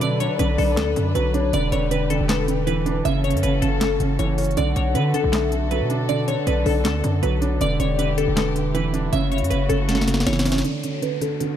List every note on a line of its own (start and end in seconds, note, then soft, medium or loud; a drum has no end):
0.00 0.28 B2 loud
0.00 0.02 D3 medium
0.00 0.19 D3 medium
0.00 0.58 F#3 medium
0.00 1.50 F#3 medium
0.00 0.77 D4 medium
0.00 3.01 D4 medium
0.00 1.50 A4 medium
0.00 3.01 B4 medium
0.00 1.11 D5 loud
0.00 0.16 D5 loud
0.00 closed hi-hat medium
0.20 0.38 D3 medium
0.20 0.35 C#5 medium
0.20 closed hi-hat medium
0.39 0.57 B1 loud
0.39 0.57 D3 medium
0.39 0.54 B4 medium
0.39 closed hi-hat medium
0.58 0.79 B1 loud
0.58 0.76 D3 medium
0.58 0.73 A4 medium
0.58 open hi-hat medium
0.77 0.95 D2 loud
0.77 0.95 D3 medium
0.77 1.13 A4 medium
0.77 snare loud
0.77 clap medium
0.77 closed hi-hat medium
0.96 1.14 F#2 loud
0.96 1.52 D3 medium
0.96 closed hi-hat medium
1.15 1.52 B1 loud
1.15 1.53 F#3 medium
1.15 1.51 B4 medium
1.15 1.33 B4 medium
1.15 closed hi-hat medium
1.34 1.53 D4 medium
1.34 1.52 C#5 medium
1.34 closed hi-hat medium
1.53 1.71 E1 loud
1.53 1.71 D3 medium
1.53 4.54 E3 medium
1.53 3.04 G4 medium
1.53 1.68 D5 loud
1.53 closed hi-hat medium
1.72 2.18 E1 loud
1.72 1.89 D3 medium
1.72 1.87 C#5 medium
1.72 closed hi-hat medium
1.91 2.09 D3 medium
1.91 2.06 B4 medium
1.91 closed hi-hat medium
2.10 2.27 D3 medium
2.10 2.25 A4 medium
2.10 closed hi-hat medium
2.20 3.02 E1 loud
2.29 2.46 D3 medium
2.29 2.65 A4 medium
2.29 3.01 B4 medium
2.29 snare loud
2.29 clap medium
2.29 closed hi-hat medium
2.48 3.05 D3 medium
2.48 closed hi-hat medium
2.67 3.05 E3 medium
2.67 3.03 B4 medium
2.67 closed hi-hat medium
2.86 3.05 D4 medium
2.86 closed hi-hat medium
3.05 3.36 F#1 loud
3.05 3.23 C#3 loud
3.05 4.56 C#4 medium
3.05 7.57 F#4 medium
3.05 4.55 A4 medium
3.05 4.15 C#5 medium
3.05 3.20 E5 loud
3.05 closed hi-hat medium
3.24 3.41 C#3 medium
3.24 3.39 C#5 medium
3.24 closed hi-hat soft
3.30 3.43 F#2 loud
3.30 closed hi-hat medium
3.37 closed hi-hat medium
3.43 3.61 F#1 loud
3.43 3.60 C#3 medium
3.43 3.58 B4 medium
3.43 closed hi-hat medium
3.61 3.99 F#1 loud
3.61 3.79 C#3 medium
3.61 3.77 A4 medium
3.61 closed hi-hat medium
3.81 3.98 C#3 medium
3.81 4.17 A4 medium
3.81 snare loud
3.81 clap medium
3.81 closed hi-hat medium
4.00 4.18 F#1 loud
4.00 4.57 C#3 medium
4.00 closed hi-hat medium
4.19 4.56 F#1 loud
4.19 4.57 E3 medium
4.19 4.55 C#5 medium
4.19 closed hi-hat medium
4.38 4.57 C#4 loud
4.38 closed hi-hat medium
4.38 open hi-hat medium
4.44 closed hi-hat medium
4.51 closed hi-hat soft
4.57 4.75 B1 loud
4.57 9.09 D3 medium
4.57 4.75 D3 loud
4.57 9.09 B3 medium
4.57 7.58 A4 medium
4.57 4.72 D5 loud
4.57 5.29 F#5 loud
4.57 closed hi-hat medium
4.76 4.97 B1 loud
4.76 4.93 D3 medium
4.76 4.91 C#5 medium
4.76 closed hi-hat medium
4.94 5.12 D3 medium
4.94 5.23 D3 loud
4.94 5.10 B4 medium
4.94 closed hi-hat medium
5.14 5.32 D3 medium
5.14 5.29 A4 medium
5.14 closed hi-hat medium
5.24 5.83 B1 loud
5.33 5.51 D3 loud
5.33 5.69 A4 medium
5.33 6.05 E5 medium
5.33 snare loud
5.33 clap medium
5.33 closed hi-hat medium
5.52 6.08 D3 medium
5.52 closed hi-hat medium
5.71 6.66 F#3 medium
5.71 6.07 B4 medium
5.71 closed hi-hat medium
5.81 6.35 B2 loud
5.90 6.85 D4 medium
5.90 closed hi-hat medium
6.09 6.26 D3 medium
6.09 7.19 D5 loud
6.09 6.24 D5 loud
6.09 closed hi-hat medium
6.28 6.46 D3 medium
6.28 6.43 C#5 medium
6.28 closed hi-hat medium
6.47 6.65 B1 loud
6.47 6.65 D3 medium
6.47 6.62 B4 medium
6.47 closed hi-hat medium
6.66 6.86 B1 loud
6.66 6.84 D3 medium
6.66 6.81 A4 medium
6.66 open hi-hat medium
6.85 7.03 D2 loud
6.85 7.02 D3 medium
6.85 7.21 A4 loud
6.85 snare loud
6.85 clap medium
6.85 closed hi-hat medium
7.04 7.22 F#2 loud
7.04 7.60 D3 medium
7.04 closed hi-hat medium
7.23 7.59 B1 loud
7.23 7.61 F#3 medium
7.23 7.58 B4 medium
7.23 7.41 B4 medium
7.23 closed hi-hat medium
7.42 7.61 D4 medium
7.42 7.60 C#5 medium
7.42 closed hi-hat medium
7.61 7.79 E1 loud
7.61 7.79 D3 medium
7.61 10.62 E4 medium
7.61 9.11 G4 medium
7.61 8.33 D5 loud
7.61 7.76 D5 loud
7.61 closed hi-hat medium
7.80 8.26 E1 loud
7.80 7.97 D3 medium
7.80 7.95 C#5 medium
7.80 closed hi-hat medium
7.98 8.17 D3 medium
7.98 8.14 B4 medium
7.98 closed hi-hat medium
8.18 8.35 D3 medium
8.18 8.32 A4 medium
8.18 closed hi-hat medium
8.28 9.09 E1 loud
8.36 8.54 D3 medium
8.36 8.73 A4 medium
8.36 9.09 B4 medium
8.36 snare loud
8.36 clap medium
8.36 closed hi-hat medium
8.55 9.13 D3 medium
8.55 closed hi-hat medium
8.74 9.13 E3 loud
8.74 9.10 B4 medium
8.74 closed hi-hat medium
8.94 9.13 D4 medium
8.94 closed hi-hat medium
9.13 9.43 F#1 loud
9.13 9.30 C#3 loud
9.13 10.63 C#3 medium
9.13 10.63 A3 medium
9.13 10.63 F#4 medium
9.13 10.23 C#5 medium
9.13 9.27 E5 loud
9.13 closed hi-hat medium
9.32 9.49 C#3 medium
9.32 9.46 C#5 medium
9.32 closed hi-hat soft
9.38 9.50 F#2 loud
9.38 closed hi-hat medium
9.44 closed hi-hat medium
9.50 9.69 F#1 loud
9.50 9.67 C#3 medium
9.50 9.65 B4 medium
9.50 closed hi-hat medium
9.69 10.24 F#1 loud
9.69 9.87 C#3 medium
9.69 9.84 A4 medium
9.69 closed hi-hat medium
9.89 10.06 C#3 medium
9.89 10.24 A4 medium
9.89 snare medium
9.89 closed hi-hat medium
9.95 snare medium
10.01 snare medium
10.07 10.65 C#3 medium
10.07 snare medium
10.07 closed hi-hat medium
10.14 snare medium
10.20 snare medium
10.27 10.63 F#1 loud
10.27 10.65 E3 medium
10.27 10.62 C#5 medium
10.27 snare medium
10.27 closed hi-hat medium
10.33 snare medium
10.39 snare loud
10.46 10.65 C#4 loud
10.46 snare medium
10.46 closed hi-hat medium
10.46 open hi-hat medium
10.52 snare loud
10.58 snare loud
10.58 closed hi-hat soft
10.64 11.57 B2 medium
10.64 10.82 D3 medium
10.64 11.57 A3 medium
10.64 11.57 D4 medium
10.64 11.57 F#4 medium
10.64 10.79 D5 loud
10.64 closed hi-hat medium
10.64 downlifter medium
10.83 11.00 D3 medium
10.83 10.98 C#5 medium
10.83 closed hi-hat medium
11.02 11.20 D3 medium
11.02 11.17 B4 medium
11.02 closed hi-hat medium
11.21 11.39 D3 medium
11.21 11.36 A4 medium
11.21 closed hi-hat medium
11.40 11.57 D3 medium
11.40 11.57 A4 medium
11.40 closed hi-hat medium